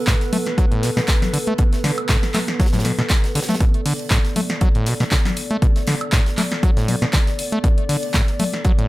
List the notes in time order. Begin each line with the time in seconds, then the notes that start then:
Already playing: B3 A4 B4
0.07 A2, kick, snare, clap, closed hi-hat
0.21 snare, closed hi-hat
0.33 A3, closed hi-hat, open hi-hat, low conga
0.46 snare, closed hi-hat
0.58 F#3, kick, closed hi-hat
0.72 A2, closed hi-hat
0.83 B2, snare, closed hi-hat, open hi-hat
0.97 B2, snare, closed hi-hat
1.08 kick, snare, clap, closed hi-hat
1.22 snare, closed hi-hat, low conga
1.33 D3, closed hi-hat, open hi-hat
1.47 A3, closed hi-hat
1.58 B2, kick, closed hi-hat
1.73 snare, closed hi-hat
1.84 D3, snare, closed hi-hat, open hi-hat
1.98 closed hi-hat, high woodblock
2.09 A2, kick, snare, clap, closed hi-hat
2.23 snare, closed hi-hat
2.34 A3, clap, closed hi-hat, open hi-hat, low conga, high woodblock
2.48 snare, closed hi-hat
2.60 F#3, kick, snare, closed hi-hat
2.66 snare, closed hi-hat
2.73 A2, snare, closed hi-hat, low conga
2.79 snare, closed hi-hat
2.85 B2, snare, closed hi-hat, open hi-hat, low conga
2.98 B2, snare, closed hi-hat
3.10 kick, snare, clap, closed hi-hat
3.24 snare, closed hi-hat
3.35 D3, snare, closed hi-hat, open hi-hat
3.42 snare, closed hi-hat
3.49 A3, snare, closed hi-hat, low conga
3.54 snare, closed hi-hat
3.60 B2 D5, kick, closed hi-hat
3.74 closed hi-hat
3.86 D3, open hi-hat
3.99 closed hi-hat
4.10 A2, kick, snare, clap, closed hi-hat
4.25 snare, closed hi-hat
4.36 A3, closed hi-hat, open hi-hat, low conga
4.50 snare, closed hi-hat
4.61 F#3, kick, closed hi-hat
4.75 A2, closed hi-hat
4.86 B2, snare, closed hi-hat, open hi-hat
5.00 B2, snare, closed hi-hat
5.11 D3, kick, snare, clap, closed hi-hat
5.25 snare, closed hi-hat, low conga
5.37 closed hi-hat, open hi-hat
5.51 A3, closed hi-hat
5.62 B2, kick, closed hi-hat
5.76 snare, closed hi-hat
5.87 D3, snare, closed hi-hat, open hi-hat
6.01 closed hi-hat, high woodblock
6.12 A2, kick, snare, clap, closed hi-hat
6.26 snare, closed hi-hat
6.38 A3, clap, closed hi-hat, open hi-hat, low conga
6.52 snare, closed hi-hat
6.63 F#3, kick, closed hi-hat
6.77 A2, snare, closed hi-hat
6.88 B2, closed hi-hat, open hi-hat, low conga
7.02 B2, snare, closed hi-hat
7.13 D3, kick, snare, clap, closed hi-hat
7.27 snare, closed hi-hat
7.39 closed hi-hat, open hi-hat
7.52 A3, closed hi-hat
7.64 B2, kick, closed hi-hat
7.78 closed hi-hat
7.89 D3, open hi-hat
8.03 closed hi-hat
8.14 A2, kick, snare, clap, closed hi-hat
8.27 snare, closed hi-hat
8.39 A3, closed hi-hat, open hi-hat, low conga
8.53 snare, closed hi-hat
8.65 F#3, kick, closed hi-hat
8.78 A2, closed hi-hat